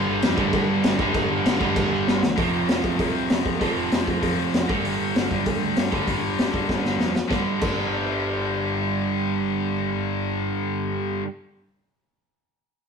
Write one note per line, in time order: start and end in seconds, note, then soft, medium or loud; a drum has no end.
0.00 0.38 G2 loud
0.00 0.36 D3 loud
0.00 0.36 G3 loud
0.07 0.20 G1 medium
0.22 0.36 F2 loud
0.22 snare loud
0.22 crash medium
0.36 0.51 G1 loud
0.36 0.96 G2 medium
0.36 0.98 D3 medium
0.36 0.98 G3 medium
0.36 kick medium
0.53 0.66 G1 loud
0.53 kick loud
0.53 crash medium
0.69 0.82 G2 medium
0.83 0.97 G1 medium
0.83 snare loud
0.83 crash medium
0.98 1.12 G1 loud
0.98 1.59 G2 loud
0.98 1.59 D3 loud
0.98 1.58 G3 loud
0.98 kick medium
1.14 1.28 G1 loud
1.14 kick loud
1.14 crash medium
1.30 1.43 G1 medium
1.44 1.58 G1 loud
1.44 snare loud
1.44 crash medium
1.59 1.74 G1 loud
1.59 2.22 G2 medium
1.59 2.21 D3 medium
1.59 2.21 G3 medium
1.59 kick medium
1.76 1.90 G1 loud
1.76 kick loud
1.76 crash medium
1.91 2.05 G1 medium
2.08 2.20 G1 medium
2.08 snare medium
2.23 2.36 D2 medium
2.23 snare loud
2.36 2.48 F1 medium
2.36 2.96 F2 medium
2.36 2.97 C3 medium
2.36 2.98 F3 medium
2.36 kick loud
2.36 open hi-hat medium
2.54 2.64 F1 medium
2.68 2.79 F1 medium
2.68 snare loud
2.68 open hi-hat medium
2.84 2.95 F1 medium
2.84 kick medium
2.97 3.10 C2 loud
2.97 3.58 F2 medium
2.97 3.60 C3 medium
2.97 3.60 F3 loud
2.97 kick loud
2.97 open hi-hat soft
3.15 3.25 C2 medium
3.30 3.41 F2 medium
3.30 snare loud
3.30 open hi-hat medium
3.46 3.56 F1 medium
3.46 kick medium
3.59 3.72 F1 medium
3.59 4.20 F2 medium
3.59 4.21 C3 medium
3.59 4.22 F3 loud
3.59 kick medium
3.59 open hi-hat medium
3.77 3.87 F1 medium
3.92 4.03 F1 medium
3.92 snare loud
3.92 open hi-hat medium
4.07 4.18 F1 medium
4.07 kick medium
4.21 4.34 F1 loud
4.21 4.67 F2 medium
4.21 4.67 C3 medium
4.21 4.68 F3 medium
4.21 kick medium
4.21 open hi-hat medium
4.39 4.49 F1 medium
4.54 4.65 F1 medium
4.54 snare loud
4.54 open hi-hat medium
4.67 4.80 G1 medium
4.67 5.32 G2 medium
4.67 5.29 D3 loud
4.67 5.30 G3 medium
4.67 kick loud
4.85 4.96 G1 medium
4.85 open hi-hat medium
5.00 5.11 G1 medium
5.16 5.26 G1 medium
5.16 snare loud
5.16 open hi-hat medium
5.31 5.42 G1 medium
5.31 5.90 G2 medium
5.31 5.90 D3 medium
5.31 5.92 G3 medium
5.31 kick medium
5.46 5.57 D2 medium
5.46 kick medium
5.46 open hi-hat medium
5.62 5.72 D2 medium
5.76 5.87 G2 medium
5.76 snare loud
5.76 open hi-hat medium
5.90 6.03 G1 medium
5.90 6.52 G2 medium
5.90 6.51 D3 loud
5.90 6.50 G3 medium
5.90 kick medium
6.08 6.18 G1 medium
6.08 kick medium
6.08 open hi-hat medium
6.23 6.34 G1 medium
6.38 6.49 G1 medium
6.38 snare loud
6.38 open hi-hat medium
6.51 6.65 G1 medium
6.51 7.14 G2 medium
6.51 7.14 D3 medium
6.51 7.13 G3 medium
6.51 kick medium
6.69 6.80 G1 medium
6.69 kick medium
6.69 snare medium
6.85 6.95 G1 medium
6.85 snare medium
6.99 7.21 F2 medium
6.99 snare medium
7.16 snare medium
7.28 7.39 G1 medium
7.28 7.58 G2 medium
7.28 7.61 D3 loud
7.28 kick loud
7.28 snare medium
7.32 7.63 G3 loud
7.59 11.22 G1 medium
7.59 11.23 G2 medium
7.59 11.25 D3 medium
7.59 kick loud
7.59 crash medium
7.63 11.27 G3 loud